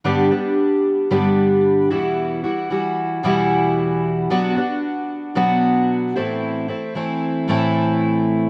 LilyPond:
\new Staff \with { instrumentName = "Twelve-string acoustic guitar" } { \time 4/4 \key g \major \tempo 4 = 113 <g, d g b d' g'>8 <g b d' g'>4. <g, d g b d' g'>4. <e, b, e g e' fis'>8~ | <e, b, e g e' fis'>8 <e g e' fis'>8 <e g e' fis'>4 <e, b, e g e' fis'>2 | <b, fis b d' fis'>8 <b d' fis'>4. <b, fis b d' fis'>4. <a, e a c' e'>8~ | <a, e a c' e'>8 <a c' e'>8 <e a c' e'>4 <a, e a c' e'>2 | }